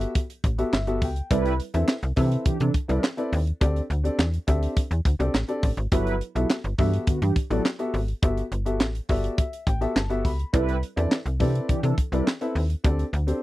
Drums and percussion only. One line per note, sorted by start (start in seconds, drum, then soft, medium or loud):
0.01 closed hi-hat medium
0.15 kick loud
0.15 closed hi-hat medium
0.30 closed hi-hat medium
0.44 kick loud
0.44 closed hi-hat medium
0.59 closed hi-hat medium
0.73 snare loud
0.73 clap medium
0.87 closed hi-hat soft
1.02 kick medium
1.02 open hi-hat medium
1.16 closed hi-hat medium
1.31 kick loud
1.31 closed hi-hat loud
1.46 closed hi-hat medium
1.60 closed hi-hat medium
1.74 closed hi-hat medium
1.88 snare loud
1.88 clap medium
2.03 closed hi-hat medium
2.16 kick medium
2.16 open hi-hat medium
2.32 closed hi-hat medium
2.45 kick loud
2.45 closed hi-hat medium
2.60 closed hi-hat medium
2.74 kick medium
2.74 closed hi-hat medium
2.89 closed hi-hat medium
3.04 snare loud
3.04 clap medium
3.18 closed hi-hat soft
3.33 open hi-hat medium
3.47 closed hi-hat medium
3.61 kick loud
3.61 closed hi-hat medium
3.76 closed hi-hat medium
3.91 closed hi-hat medium
4.05 closed hi-hat medium
4.19 snare loud
4.19 clap medium
4.34 closed hi-hat medium
4.48 kick medium
4.48 closed hi-hat medium
4.63 closed hi-hat medium
4.77 kick loud
4.77 closed hi-hat medium
4.91 closed hi-hat medium
5.05 kick loud
5.05 closed hi-hat medium
5.20 closed hi-hat medium
5.35 snare loud
5.35 clap medium
5.49 closed hi-hat soft
5.63 kick loud
5.63 open hi-hat medium
5.77 closed hi-hat medium
5.92 kick loud
5.92 closed hi-hat loud
6.07 closed hi-hat soft
6.21 closed hi-hat medium
6.36 closed hi-hat medium
6.50 snare loud
6.50 clap medium
6.64 closed hi-hat medium
6.78 kick medium
6.78 open hi-hat medium
6.93 closed hi-hat medium
7.07 kick loud
7.07 closed hi-hat medium
7.22 closed hi-hat medium
7.36 kick loud
7.36 closed hi-hat medium
7.51 closed hi-hat medium
7.65 snare loud
7.65 clap medium
7.79 closed hi-hat medium
7.94 open hi-hat medium
8.08 closed hi-hat medium
8.23 kick loud
8.23 closed hi-hat medium
8.37 closed hi-hat medium
8.52 closed hi-hat medium
8.66 closed hi-hat medium
8.80 snare loud
8.80 clap medium
8.95 closed hi-hat medium
9.09 kick medium
9.09 open hi-hat medium
9.24 closed hi-hat medium
9.38 kick loud
9.38 closed hi-hat medium
9.53 closed hi-hat medium
9.67 kick medium
9.67 closed hi-hat medium
9.82 closed hi-hat medium
9.96 snare loud
9.96 clap medium
10.10 closed hi-hat soft
10.25 kick medium
10.25 open hi-hat medium
10.39 closed hi-hat medium
10.54 kick loud
10.54 closed hi-hat medium
10.69 closed hi-hat soft
10.83 closed hi-hat medium
10.97 closed hi-hat medium
11.12 snare loud
11.12 clap medium
11.26 closed hi-hat medium
11.40 kick medium
11.40 open hi-hat medium
11.55 closed hi-hat medium
11.69 kick loud
11.69 closed hi-hat medium
11.84 closed hi-hat medium
11.98 kick medium
11.98 closed hi-hat medium
12.13 closed hi-hat medium
12.27 snare loud
12.27 clap medium
12.41 closed hi-hat medium
12.56 open hi-hat medium
12.70 closed hi-hat medium
12.84 kick loud
12.84 closed hi-hat medium
12.99 closed hi-hat medium
13.14 closed hi-hat medium
13.28 closed hi-hat medium